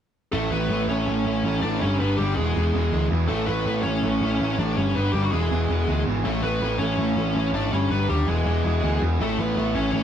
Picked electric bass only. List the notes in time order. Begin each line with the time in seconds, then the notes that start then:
0.33 A1
0.51 A1
0.70 A1
0.88 A1
1.07 A1
1.26 A1
1.44 A1
1.63 A1
1.82 G1
2.01 G1
2.19 G1
2.37 E1
2.56 E1
2.74 E1
2.93 D2
3.12 E2
3.29 A1
3.49 A1
3.66 A1
3.85 A1
4.03 A1
4.22 A1
4.41 A1
4.59 A1
4.77 G1
4.96 G1
5.14 G1
5.33 E1
5.51 E1
5.69 E1
5.88 D2
6.06 G#1
6.24 A1
6.43 A1
6.61 A1
6.80 A1
6.98 A1
7.17 A1
7.35 A1
7.53 G#1
7.72 G1
7.90 G1
8.10 D#2
8.27 E1
8.46 E1
8.65 E1
8.83 D2
9.02 E2
9.21 A1
9.39 A1
9.57 A1
9.75 A1
9.94 A1